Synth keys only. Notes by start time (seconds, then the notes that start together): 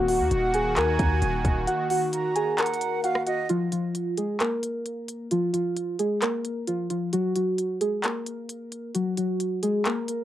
0.08 F#4 F#5
0.54 G#4 G#5
0.76 A#4 A#5
1.67 F#4 F#5
1.90 F#4 F#5
2.36 G#4 G#5
2.58 A#4 A#5
3.04 F#4 F#5
3.27 F#4 F#5
3.50 F3 F4
3.72 F3 F4
4.17 G#3 G#4
4.40 A#3 A#4
5.31 F3 F4
5.53 F3 F4
5.99 G#3 G#4
6.22 A#3 A#4
6.67 F3 F4
6.90 F3 F4
7.13 F#3 F#4
7.36 F#3 F#4
7.81 G#3 G#4
8.04 A#3 A#4
8.95 F#3 F#4
9.17 F#3 F#4
9.63 G#3 G#4
9.86 A#3 A#4